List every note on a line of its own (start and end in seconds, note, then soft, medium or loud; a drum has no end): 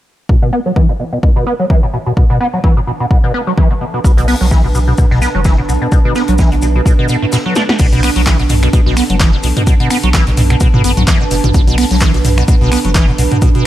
0.29 0.37 B2 medium
0.29 13.67 D4 medium
0.29 kick loud
0.42 0.51 B2 loud
0.47 13.67 A5 medium
0.51 0.60 B3 loud
0.51 13.67 B4 medium
0.66 0.72 F#3 medium
0.76 0.87 E3 medium
0.76 kick loud
0.89 0.93 B2 medium
1.00 1.04 B2 medium
1.13 1.18 B2 medium
1.23 1.30 B2 medium
1.23 kick loud
1.36 1.45 B2 loud
1.47 1.54 B3 loud
1.60 1.65 F#3 medium
1.70 1.81 E3 loud
1.70 kick loud
1.83 1.87 B2 medium
1.93 1.98 B2 medium
2.06 2.12 B2 medium
2.17 2.24 B2 medium
2.17 kick loud
2.30 2.39 B2 loud
2.40 2.48 B3 loud
2.53 2.59 F#3 medium
2.64 2.75 E3 loud
2.64 kick loud
2.77 2.80 B2 medium
2.87 2.92 B2 medium
3.00 3.06 B2 medium
3.11 3.18 B2 medium
3.11 kick loud
3.24 3.32 B2 loud
3.34 3.41 B3 loud
3.47 3.53 F#3 medium
3.57 3.68 E3 loud
3.57 kick loud
3.71 3.74 B2 medium
3.81 3.85 B2 medium
3.94 4.00 B2 medium
4.04 4.34 B1 loud
4.04 4.12 B2 medium
4.04 kick loud
4.04 shaker medium
4.17 4.26 B2 loud
4.17 closed hi-hat soft
4.28 4.35 B3 loud
4.28 open hi-hat medium
4.41 4.93 B1 loud
4.41 4.47 F#3 medium
4.41 snare soft
4.51 4.62 E3 loud
4.51 kick loud
4.51 snare loud
4.51 shaker medium
4.64 4.68 B2 medium
4.75 4.79 B2 medium
4.75 shaker medium
4.88 4.93 B2 medium
4.98 5.05 B2 medium
4.98 kick loud
4.98 shaker medium
5.11 5.27 B1 loud
5.11 5.20 B2 loud
5.11 snare soft
5.22 5.29 B3 loud
5.22 snare soft
5.22 shaker medium
5.35 5.63 F#1 medium
5.35 5.40 F#3 medium
5.45 5.56 E3 loud
5.45 kick loud
5.45 snare loud
5.45 shaker medium
5.58 5.62 B2 medium
5.69 5.78 B1 medium
5.69 5.73 B2 medium
5.69 shaker medium
5.82 5.87 B2 medium
5.92 5.99 B2 medium
5.92 kick loud
5.92 shaker medium
6.05 6.14 B2 loud
6.15 6.23 B3 loud
6.15 snare soft
6.15 shaker medium
6.28 6.81 B1 loud
6.28 6.34 F#3 medium
6.28 closed hi-hat soft
6.38 6.50 E3 medium
6.38 kick loud
6.38 snare loud
6.38 shaker medium
6.52 6.55 B2 medium
6.52 closed hi-hat soft
6.62 6.67 B2 medium
6.62 shaker medium
6.75 6.81 B2 medium
6.86 6.93 B2 medium
6.86 kick loud
6.86 shaker medium
6.99 7.07 B2 loud
7.08 7.16 B2 loud
7.08 shaker medium
7.22 7.26 A2 medium
7.32 7.37 B2 loud
7.32 snare loud
7.32 shaker medium
7.46 7.54 F#3 medium
7.56 7.63 D4 medium
7.56 snare medium
7.56 shaker medium
7.69 7.73 B3 loud
7.69 snare loud
7.79 8.10 B1 loud
7.79 7.87 B2 medium
7.79 kick loud
7.79 closed hi-hat medium
7.79 crash loud
7.79 shaker medium
7.92 8.01 B2 loud
7.92 closed hi-hat soft
8.03 8.10 B3 loud
8.03 finger snap medium
8.03 open hi-hat loud
8.03 open hi-hat medium
8.16 8.68 B1 loud
8.16 8.22 F#3 medium
8.16 snare soft
8.16 closed hi-hat medium
8.26 8.37 E3 loud
8.26 kick loud
8.26 snare loud
8.26 clap loud
8.26 closed hi-hat medium
8.26 shaker medium
8.39 8.43 B2 medium
8.39 closed hi-hat soft
8.49 8.54 B2 medium
8.49 mid tom loud
8.49 open hi-hat loud
8.49 shaker medium
8.63 8.69 B2 medium
8.63 finger snap medium
8.63 closed hi-hat medium
8.73 8.80 B2 medium
8.73 kick loud
8.73 closed hi-hat medium
8.73 shaker medium
8.86 9.02 B1 loud
8.86 8.95 B2 loud
8.86 snare soft
8.96 9.04 B3 loud
8.96 finger snap medium
8.96 snare medium
8.96 open hi-hat loud
8.96 shaker medium
9.10 9.38 F#1 medium
9.10 9.15 F#3 medium
9.10 closed hi-hat medium
9.20 9.31 E3 loud
9.20 kick loud
9.20 snare loud
9.20 clap loud
9.20 closed hi-hat medium
9.20 shaker medium
9.33 9.37 B2 medium
9.43 9.52 B1 medium
9.43 9.48 B2 medium
9.43 open hi-hat medium
9.43 shaker medium
9.57 9.62 B2 medium
9.57 closed hi-hat medium
9.57 mid tom medium
9.67 9.74 B2 medium
9.67 kick loud
9.67 closed hi-hat medium
9.67 shaker medium
9.80 9.89 B2 loud
9.80 closed hi-hat soft
9.90 9.98 B3 loud
9.90 finger snap medium
9.90 snare soft
9.90 open hi-hat loud
9.90 shaker medium
10.03 10.56 B1 loud
10.03 10.09 F#3 medium
10.03 closed hi-hat soft
10.03 closed hi-hat medium
10.13 10.25 E3 loud
10.13 kick loud
10.13 snare loud
10.13 clap loud
10.13 closed hi-hat medium
10.13 shaker medium
10.27 10.30 B2 medium
10.27 closed hi-hat soft
10.37 10.42 B2 medium
10.37 mid tom loud
10.37 open hi-hat loud
10.37 shaker medium
10.50 10.56 B2 medium
10.50 finger snap medium
10.50 closed hi-hat medium
10.60 10.68 B2 medium
10.60 kick loud
10.60 closed hi-hat medium
10.60 shaker medium
10.74 10.82 B2 loud
10.74 mid tom medium
10.84 10.93 A1 medium
10.84 10.91 B3 loud
10.84 open hi-hat loud
10.84 shaker medium
10.97 11.04 B1 medium
10.97 11.03 F#3 medium
10.97 closed hi-hat soft
10.97 mid tom medium
11.07 11.18 E3 loud
11.07 kick loud
11.07 snare loud
11.07 clap loud
11.07 closed hi-hat medium
11.07 shaker medium
11.21 11.24 B2 medium
11.31 11.40 F#1 medium
11.31 11.35 B2 medium
11.31 open hi-hat medium
11.31 shaker medium
11.44 11.51 A1 medium
11.44 11.50 B2 medium
11.44 closed hi-hat medium
11.44 mid tom medium
11.54 11.85 B1 loud
11.54 11.62 B2 medium
11.54 kick loud
11.54 closed hi-hat medium
11.54 shaker medium
11.67 11.76 B2 loud
11.67 closed hi-hat soft
11.77 11.85 B3 loud
11.77 finger snap medium
11.77 open hi-hat medium
11.77 open hi-hat loud
11.91 12.43 B1 medium
11.91 11.97 F#3 medium
11.91 snare soft
11.91 closed hi-hat soft
12.00 12.12 E3 medium
12.00 kick loud
12.00 snare loud
12.00 clap loud
12.00 closed hi-hat medium
12.00 shaker medium
12.14 12.18 B2 medium
12.14 closed hi-hat soft
12.25 12.29 B2 medium
12.25 mid tom loud
12.25 open hi-hat loud
12.25 shaker medium
12.38 12.44 B2 medium
12.38 finger snap medium
12.38 closed hi-hat soft
12.48 12.55 B2 medium
12.48 kick loud
12.48 closed hi-hat medium
12.48 shaker medium
12.61 12.77 B1 loud
12.61 12.70 B2 loud
12.61 snare soft
12.72 12.79 B3 loud
12.72 finger snap medium
12.72 snare soft
12.72 open hi-hat loud
12.72 shaker medium
12.85 13.13 F#1 medium
12.85 12.90 F#3 medium
12.85 closed hi-hat medium
12.95 13.06 E3 loud
12.95 kick loud
12.95 snare loud
12.95 clap loud
12.95 closed hi-hat medium
12.95 shaker medium
13.08 13.12 B2 medium
13.18 13.28 B1 medium
13.18 13.23 B2 medium
13.18 open hi-hat loud
13.18 shaker medium
13.32 13.37 B2 medium
13.32 closed hi-hat soft
13.32 mid tom medium
13.42 13.49 B2 medium
13.42 kick loud
13.42 closed hi-hat medium
13.42 shaker medium
13.55 13.64 B2 loud
13.55 closed hi-hat soft